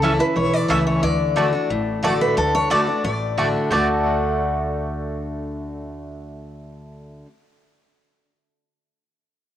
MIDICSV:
0, 0, Header, 1, 5, 480
1, 0, Start_track
1, 0, Key_signature, 2, "major"
1, 0, Tempo, 335196
1, 1475, Time_signature, 4, 2, 24, 8
1, 13698, End_track
2, 0, Start_track
2, 0, Title_t, "Steel-string acoustic guitar"
2, 0, Program_c, 0, 25
2, 0, Note_on_c, 0, 69, 107
2, 234, Note_off_c, 0, 69, 0
2, 288, Note_on_c, 0, 71, 100
2, 522, Note_on_c, 0, 73, 101
2, 528, Note_off_c, 0, 71, 0
2, 767, Note_off_c, 0, 73, 0
2, 767, Note_on_c, 0, 74, 105
2, 1000, Note_off_c, 0, 74, 0
2, 1000, Note_on_c, 0, 76, 116
2, 1236, Note_off_c, 0, 76, 0
2, 1242, Note_on_c, 0, 73, 100
2, 1461, Note_off_c, 0, 73, 0
2, 1473, Note_on_c, 0, 74, 101
2, 2856, Note_off_c, 0, 74, 0
2, 2926, Note_on_c, 0, 74, 105
2, 3146, Note_off_c, 0, 74, 0
2, 3166, Note_on_c, 0, 71, 91
2, 3383, Note_off_c, 0, 71, 0
2, 3397, Note_on_c, 0, 69, 100
2, 3621, Note_off_c, 0, 69, 0
2, 3645, Note_on_c, 0, 73, 104
2, 3862, Note_off_c, 0, 73, 0
2, 3878, Note_on_c, 0, 74, 109
2, 4342, Note_off_c, 0, 74, 0
2, 4359, Note_on_c, 0, 74, 84
2, 5029, Note_off_c, 0, 74, 0
2, 5321, Note_on_c, 0, 74, 84
2, 10342, Note_off_c, 0, 74, 0
2, 13698, End_track
3, 0, Start_track
3, 0, Title_t, "Mandolin"
3, 0, Program_c, 1, 25
3, 41, Note_on_c, 1, 61, 93
3, 46, Note_on_c, 1, 69, 88
3, 48, Note_on_c, 1, 76, 94
3, 55, Note_on_c, 1, 81, 101
3, 169, Note_off_c, 1, 61, 0
3, 171, Note_off_c, 1, 69, 0
3, 173, Note_off_c, 1, 76, 0
3, 176, Note_off_c, 1, 81, 0
3, 1000, Note_on_c, 1, 61, 96
3, 1004, Note_on_c, 1, 69, 91
3, 1010, Note_on_c, 1, 76, 110
3, 1012, Note_on_c, 1, 81, 100
3, 1128, Note_off_c, 1, 61, 0
3, 1130, Note_off_c, 1, 69, 0
3, 1133, Note_off_c, 1, 76, 0
3, 1134, Note_off_c, 1, 81, 0
3, 1951, Note_on_c, 1, 57, 82
3, 1956, Note_on_c, 1, 66, 88
3, 1959, Note_on_c, 1, 74, 89
3, 1963, Note_on_c, 1, 81, 94
3, 2083, Note_off_c, 1, 57, 0
3, 2086, Note_off_c, 1, 66, 0
3, 2087, Note_off_c, 1, 74, 0
3, 2089, Note_off_c, 1, 81, 0
3, 2910, Note_on_c, 1, 57, 90
3, 2915, Note_on_c, 1, 66, 102
3, 2919, Note_on_c, 1, 74, 91
3, 2924, Note_on_c, 1, 81, 97
3, 3042, Note_off_c, 1, 57, 0
3, 3045, Note_off_c, 1, 66, 0
3, 3047, Note_off_c, 1, 74, 0
3, 3049, Note_off_c, 1, 81, 0
3, 3872, Note_on_c, 1, 57, 95
3, 3877, Note_on_c, 1, 66, 99
3, 3881, Note_on_c, 1, 74, 102
3, 3883, Note_on_c, 1, 81, 89
3, 4003, Note_off_c, 1, 57, 0
3, 4006, Note_off_c, 1, 66, 0
3, 4008, Note_off_c, 1, 74, 0
3, 4009, Note_off_c, 1, 81, 0
3, 4836, Note_on_c, 1, 57, 87
3, 4838, Note_on_c, 1, 66, 90
3, 4845, Note_on_c, 1, 74, 95
3, 4847, Note_on_c, 1, 81, 99
3, 4965, Note_off_c, 1, 57, 0
3, 4967, Note_off_c, 1, 66, 0
3, 4970, Note_off_c, 1, 74, 0
3, 4971, Note_off_c, 1, 81, 0
3, 5306, Note_on_c, 1, 57, 85
3, 5318, Note_on_c, 1, 66, 91
3, 5329, Note_on_c, 1, 74, 87
3, 5335, Note_on_c, 1, 81, 96
3, 10385, Note_off_c, 1, 57, 0
3, 10397, Note_off_c, 1, 66, 0
3, 10408, Note_off_c, 1, 74, 0
3, 10414, Note_off_c, 1, 81, 0
3, 13698, End_track
4, 0, Start_track
4, 0, Title_t, "Steel-string acoustic guitar"
4, 0, Program_c, 2, 25
4, 0, Note_on_c, 2, 49, 95
4, 29, Note_on_c, 2, 52, 87
4, 41, Note_on_c, 2, 57, 98
4, 50, Note_on_c, 2, 61, 107
4, 59, Note_on_c, 2, 64, 110
4, 256, Note_off_c, 2, 64, 0
4, 265, Note_off_c, 2, 52, 0
4, 272, Note_off_c, 2, 57, 0
4, 273, Note_on_c, 2, 64, 68
4, 276, Note_off_c, 2, 61, 0
4, 297, Note_on_c, 2, 61, 50
4, 473, Note_off_c, 2, 49, 0
4, 504, Note_off_c, 2, 64, 0
4, 510, Note_on_c, 2, 52, 92
4, 516, Note_off_c, 2, 61, 0
4, 963, Note_off_c, 2, 52, 0
4, 980, Note_on_c, 2, 52, 92
4, 989, Note_on_c, 2, 57, 91
4, 1000, Note_on_c, 2, 61, 109
4, 1008, Note_on_c, 2, 64, 100
4, 1444, Note_off_c, 2, 52, 0
4, 1448, Note_off_c, 2, 57, 0
4, 1454, Note_off_c, 2, 61, 0
4, 1458, Note_off_c, 2, 64, 0
4, 1475, Note_on_c, 2, 50, 89
4, 1928, Note_off_c, 2, 50, 0
4, 1945, Note_on_c, 2, 50, 101
4, 1958, Note_on_c, 2, 57, 93
4, 1966, Note_on_c, 2, 62, 91
4, 1976, Note_on_c, 2, 66, 102
4, 2168, Note_off_c, 2, 66, 0
4, 2183, Note_off_c, 2, 50, 0
4, 2185, Note_on_c, 2, 66, 61
4, 2189, Note_off_c, 2, 57, 0
4, 2193, Note_off_c, 2, 62, 0
4, 2209, Note_on_c, 2, 62, 53
4, 2419, Note_off_c, 2, 66, 0
4, 2431, Note_off_c, 2, 62, 0
4, 2439, Note_on_c, 2, 45, 90
4, 2900, Note_on_c, 2, 50, 91
4, 2912, Note_on_c, 2, 57, 87
4, 2922, Note_on_c, 2, 62, 91
4, 2930, Note_on_c, 2, 66, 88
4, 3349, Note_off_c, 2, 45, 0
4, 3363, Note_off_c, 2, 50, 0
4, 3369, Note_off_c, 2, 57, 0
4, 3374, Note_off_c, 2, 62, 0
4, 3378, Note_off_c, 2, 66, 0
4, 3391, Note_on_c, 2, 50, 92
4, 3848, Note_off_c, 2, 50, 0
4, 3865, Note_on_c, 2, 50, 83
4, 3874, Note_on_c, 2, 57, 89
4, 3886, Note_on_c, 2, 62, 90
4, 3892, Note_on_c, 2, 66, 99
4, 4092, Note_off_c, 2, 66, 0
4, 4102, Note_off_c, 2, 50, 0
4, 4107, Note_off_c, 2, 57, 0
4, 4109, Note_on_c, 2, 66, 65
4, 4113, Note_off_c, 2, 62, 0
4, 4132, Note_on_c, 2, 62, 52
4, 4341, Note_off_c, 2, 66, 0
4, 4353, Note_off_c, 2, 62, 0
4, 4358, Note_on_c, 2, 45, 90
4, 4832, Note_on_c, 2, 50, 82
4, 4841, Note_on_c, 2, 57, 91
4, 4849, Note_on_c, 2, 62, 88
4, 4854, Note_on_c, 2, 66, 95
4, 5269, Note_off_c, 2, 45, 0
4, 5290, Note_off_c, 2, 50, 0
4, 5294, Note_off_c, 2, 57, 0
4, 5298, Note_off_c, 2, 62, 0
4, 5301, Note_off_c, 2, 66, 0
4, 5308, Note_on_c, 2, 50, 78
4, 5324, Note_on_c, 2, 57, 91
4, 5337, Note_on_c, 2, 62, 87
4, 5352, Note_on_c, 2, 66, 87
4, 10387, Note_off_c, 2, 50, 0
4, 10402, Note_off_c, 2, 57, 0
4, 10416, Note_off_c, 2, 62, 0
4, 10431, Note_off_c, 2, 66, 0
4, 13698, End_track
5, 0, Start_track
5, 0, Title_t, "Upright bass"
5, 0, Program_c, 3, 32
5, 0, Note_on_c, 3, 37, 99
5, 256, Note_off_c, 3, 37, 0
5, 515, Note_on_c, 3, 35, 90
5, 923, Note_off_c, 3, 35, 0
5, 989, Note_on_c, 3, 37, 83
5, 1400, Note_off_c, 3, 37, 0
5, 1468, Note_on_c, 3, 38, 89
5, 2171, Note_off_c, 3, 38, 0
5, 2429, Note_on_c, 3, 33, 92
5, 3131, Note_off_c, 3, 33, 0
5, 3389, Note_on_c, 3, 38, 86
5, 4091, Note_off_c, 3, 38, 0
5, 4350, Note_on_c, 3, 33, 90
5, 5052, Note_off_c, 3, 33, 0
5, 5308, Note_on_c, 3, 38, 91
5, 10330, Note_off_c, 3, 38, 0
5, 13698, End_track
0, 0, End_of_file